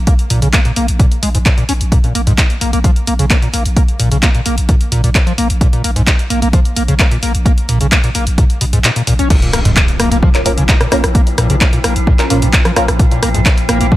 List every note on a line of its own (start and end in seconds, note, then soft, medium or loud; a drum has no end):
0.07 0.14 A#3 medium
0.07 kick loud
0.07 closed hi-hat medium
0.19 closed hi-hat medium
0.30 0.42 A#1 loud
0.30 0.40 A#2 loud
0.30 open hi-hat loud
0.42 0.53 A#1 medium
0.42 0.48 C#3 medium
0.42 closed hi-hat medium
0.53 0.60 A#3 medium
0.53 kick loud
0.53 clap loud
0.53 closed hi-hat medium
0.65 0.71 A#2 loud
0.65 closed hi-hat medium
0.76 0.88 A#1 loud
0.76 0.86 A#3 medium
0.76 open hi-hat loud
0.88 0.99 A#1 medium
0.88 closed hi-hat soft
1.00 1.06 A#2 loud
1.00 kick loud
1.00 closed hi-hat medium
1.12 closed hi-hat medium
1.23 1.34 A#1 loud
1.23 1.29 G#3 medium
1.23 open hi-hat loud
1.34 1.45 A#1 medium
1.34 1.38 G#2 medium
1.34 closed hi-hat medium
1.46 1.50 A#2 loud
1.46 kick loud
1.46 clap loud
1.46 closed hi-hat medium
1.58 1.64 A#2 loud
1.58 closed hi-hat medium
1.69 1.80 A#1 loud
1.69 1.73 C#4 loud
1.69 open hi-hat loud
1.81 1.92 A#1 medium
1.81 closed hi-hat medium
1.92 1.98 A#2 loud
1.92 kick loud
1.92 closed hi-hat medium
2.04 2.13 A#2 medium
2.04 closed hi-hat medium
2.15 2.26 A#1 medium
2.15 2.21 A#3 medium
2.15 open hi-hat loud
2.27 2.38 A#1 medium
2.27 2.33 G#2 loud
2.27 closed hi-hat soft
2.38 kick loud
2.38 clap loud
2.38 closed hi-hat medium
2.50 closed hi-hat soft
2.61 2.72 A#1 loud
2.61 2.71 A#3 medium
2.61 open hi-hat loud
2.73 2.84 A#1 medium
2.73 2.79 A#3 medium
2.73 closed hi-hat soft
2.84 2.91 F3 loud
2.84 kick loud
2.84 closed hi-hat medium
2.96 closed hi-hat medium
3.07 3.19 A#1 loud
3.07 3.14 A#3 medium
3.07 open hi-hat loud
3.19 3.30 A#1 medium
3.19 3.25 C#3 medium
3.19 closed hi-hat medium
3.30 3.37 A#3 medium
3.30 kick loud
3.30 clap loud
3.30 closed hi-hat medium
3.42 3.48 A#2 medium
3.42 closed hi-hat medium
3.53 3.65 A#1 loud
3.53 3.63 A#3 medium
3.53 open hi-hat loud
3.65 3.76 A#1 medium
3.65 closed hi-hat soft
3.76 3.83 A#3 medium
3.76 kick loud
3.76 closed hi-hat medium
3.88 closed hi-hat soft
4.00 4.11 A#1 loud
4.00 4.09 A#2 loud
4.00 open hi-hat loud
4.11 4.22 A#1 medium
4.11 4.18 C#3 medium
4.11 closed hi-hat medium
4.23 4.29 A#3 medium
4.23 kick loud
4.23 clap loud
4.23 closed hi-hat medium
4.35 4.41 A#2 loud
4.35 closed hi-hat soft
4.46 4.57 A#1 loud
4.46 4.56 A#3 medium
4.46 open hi-hat loud
4.58 4.69 A#1 medium
4.58 closed hi-hat medium
4.69 4.75 A#2 loud
4.69 kick loud
4.69 closed hi-hat medium
4.81 closed hi-hat medium
4.92 5.03 A#1 loud
4.92 5.02 A#2 loud
4.92 open hi-hat loud
5.04 5.15 A#1 medium
5.04 5.10 A#2 medium
5.04 closed hi-hat medium
5.15 kick loud
5.15 clap loud
5.15 closed hi-hat medium
5.27 5.33 F3 loud
5.27 closed hi-hat soft
5.38 5.49 A#1 loud
5.38 5.48 A#3 medium
5.38 open hi-hat loud
5.50 5.61 A#1 medium
5.50 closed hi-hat soft
5.61 5.68 A#2 loud
5.61 kick loud
5.61 closed hi-hat medium
5.73 5.82 A#2 medium
5.73 closed hi-hat soft
5.84 5.95 A#1 loud
5.84 5.91 A#3 medium
5.84 open hi-hat medium
5.96 6.07 A#1 medium
5.96 6.02 G#2 loud
5.96 closed hi-hat soft
6.07 kick loud
6.07 clap loud
6.07 closed hi-hat loud
6.19 closed hi-hat medium
6.30 6.42 A#1 loud
6.30 6.40 A#3 medium
6.30 open hi-hat loud
6.42 6.53 A#1 medium
6.42 6.48 A#3 medium
6.42 closed hi-hat soft
6.53 6.60 F3 loud
6.53 kick loud
6.53 closed hi-hat medium
6.65 closed hi-hat medium
6.76 6.88 A#1 loud
6.76 6.83 A#3 medium
6.76 open hi-hat loud
6.88 6.99 A#1 medium
6.88 6.94 C#3 medium
6.88 closed hi-hat medium
6.99 7.06 A#3 medium
6.99 kick loud
6.99 clap loud
6.99 closed hi-hat medium
7.11 7.18 A#2 medium
7.11 closed hi-hat medium
7.23 7.34 A#1 loud
7.23 7.32 A#3 medium
7.23 open hi-hat loud
7.35 7.46 A#1 medium
7.35 closed hi-hat medium
7.46 7.52 A#3 medium
7.46 kick loud
7.46 closed hi-hat medium
7.58 closed hi-hat medium
7.69 7.80 A#1 loud
7.69 7.79 A#2 loud
7.69 open hi-hat medium
7.81 7.92 A#1 medium
7.81 7.87 C#3 medium
7.81 closed hi-hat medium
7.92 7.99 A#3 medium
7.92 kick loud
7.92 clap loud
7.92 closed hi-hat loud
8.04 8.10 A#2 loud
8.04 closed hi-hat medium
8.15 8.26 A#1 loud
8.15 8.25 A#3 medium
8.15 open hi-hat loud
8.27 8.38 A#1 medium
8.27 closed hi-hat medium
8.38 8.45 A#2 loud
8.38 kick loud
8.38 closed hi-hat loud
8.50 closed hi-hat medium
8.61 8.72 A#1 loud
8.61 8.65 B2 medium
8.61 open hi-hat loud
8.73 8.84 A#1 medium
8.73 8.79 G#2 medium
8.73 closed hi-hat medium
8.84 8.91 A#2 medium
8.84 clap loud
8.84 closed hi-hat medium
8.96 9.02 A#2 medium
8.96 closed hi-hat medium
9.07 9.19 A#1 loud
9.07 9.14 A#2 loud
9.07 open hi-hat loud
9.19 9.30 A#1 medium
9.19 9.28 C#4 medium
9.19 closed hi-hat medium
9.30 9.37 A#2 loud
9.30 13.97 A#2 medium
9.30 13.97 F3 medium
9.30 kick loud
9.30 closed hi-hat medium
9.30 crash loud
9.30 impact medium
9.42 9.52 A#2 medium
9.42 closed hi-hat medium
9.53 9.65 A#1 loud
9.53 9.60 A#3 medium
9.53 cross-stick medium
9.53 open hi-hat loud
9.65 9.76 A#1 medium
9.65 9.71 G#2 loud
9.65 closed hi-hat medium
9.77 kick loud
9.77 clap loud
9.77 closed hi-hat medium
9.88 closed hi-hat medium
9.99 10.11 A#1 loud
9.99 10.09 A#3 medium
9.99 cross-stick medium
9.99 open hi-hat loud
10.11 10.22 A#1 medium
10.11 10.18 A#3 medium
10.11 closed hi-hat medium
10.23 10.29 F3 loud
10.23 kick loud
10.35 10.44 C#4 loud
10.35 10.44 F4 medium
10.35 10.44 A#4 loud
10.35 clap medium
10.35 closed hi-hat medium
10.46 10.57 A#1 loud
10.46 10.52 A#3 medium
10.46 10.89 C#4 medium
10.46 10.89 F4 medium
10.46 10.89 A#4 loud
10.46 open hi-hat loud
10.57 10.69 A#1 medium
10.57 10.64 C#3 medium
10.57 closed hi-hat medium
10.69 10.75 A#3 medium
10.69 kick loud
10.69 clap loud
10.69 closed hi-hat medium
10.81 10.87 A#2 medium
10.81 cross-stick medium
10.81 closed hi-hat medium
10.92 11.03 A#1 loud
10.92 11.02 A#3 medium
10.92 11.00 C#4 loud
10.92 11.00 F4 medium
10.92 11.00 A#4 loud
10.92 cross-stick medium
10.92 open hi-hat loud
11.04 11.15 A#1 medium
11.04 cross-stick medium
11.04 closed hi-hat medium
11.15 11.21 A#3 medium
11.15 kick loud
11.15 closed hi-hat medium
11.27 closed hi-hat medium
11.38 11.49 A#1 medium
11.38 11.48 A#2 loud
11.38 cross-stick medium
11.38 open hi-hat loud
11.50 11.61 A#1 medium
11.50 11.56 C#3 medium
11.50 closed hi-hat medium
11.61 11.68 A#3 medium
11.61 kick loud
11.61 clap loud
11.61 closed hi-hat medium
11.73 11.79 A#2 loud
11.73 closed hi-hat medium
11.84 11.95 A#1 loud
11.84 11.94 A#3 medium
11.84 cross-stick medium
11.84 open hi-hat loud
11.96 12.07 A#1 medium
11.96 closed hi-hat medium
12.07 12.14 A#2 loud
12.07 kick loud
12.19 12.29 C#4 loud
12.19 12.29 F4 medium
12.19 12.29 A#4 loud
12.19 clap medium
12.19 closed hi-hat medium
12.30 12.42 A#1 loud
12.30 12.40 A#2 loud
12.30 12.74 C#4 medium
12.30 12.74 F4 medium
12.30 12.74 A#4 loud
12.30 open hi-hat loud
12.42 12.53 A#1 medium
12.42 12.48 A#2 medium
12.42 closed hi-hat medium
12.53 kick loud
12.53 clap loud
12.53 closed hi-hat medium
12.65 12.71 F3 loud
12.65 cross-stick medium
12.65 closed hi-hat medium
12.76 12.88 A#1 loud
12.76 12.86 A#3 medium
12.76 12.85 C#4 loud
12.76 12.85 F4 medium
12.76 12.85 A#4 loud
12.76 cross-stick medium
12.76 open hi-hat loud
12.88 12.99 A#1 medium
12.88 cross-stick medium
12.88 closed hi-hat medium
12.99 13.06 A#2 loud
12.99 kick loud
12.99 closed hi-hat medium
13.11 13.21 A#2 medium
13.11 closed hi-hat medium
13.23 13.34 A#1 medium
13.23 13.29 A#3 medium
13.23 cross-stick medium
13.23 open hi-hat loud
13.34 13.45 A#1 medium
13.34 13.41 G#2 loud
13.34 closed hi-hat medium
13.46 kick loud
13.46 clap loud
13.46 closed hi-hat medium
13.58 closed hi-hat medium
13.69 13.80 A#1 loud
13.69 13.79 A#3 medium
13.69 cross-stick medium
13.69 open hi-hat loud
13.81 13.92 A#1 medium
13.81 13.87 A#3 medium
13.81 closed hi-hat medium
13.92 13.97 F3 loud
13.92 kick loud